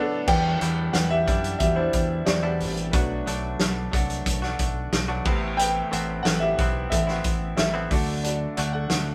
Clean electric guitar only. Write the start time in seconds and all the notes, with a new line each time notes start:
Already playing: F#3 A3 D4 F#4
0.27 E2 B2 E3 G3 D4 E4
0.60 E2 B2 E3 G3 D4 E4
1.26 E3 G3 D4 E4
1.76 E3 G3 D4 E4
2.43 E2 B2 E3 G3 D4 E4
2.93 B2 F#3 A3 D4 F#4
3.26 B2 F#3 A3 D4 F#4
3.92 F#3 A3 D4 F#4
4.42 A3 D4 F#4
5.08 B2 F#3 A3 D4 F#4
5.25 A2 E3 B3 C4 E4
5.91 A2 E3 B3 C4 E4
6.58 E3 B3 C4 E4
7.07 B3 C4 E4
7.74 A2 E3 B3 C4 E4
7.91 D3 A3 D4 F#4
8.57 D3 A3 D4 F#4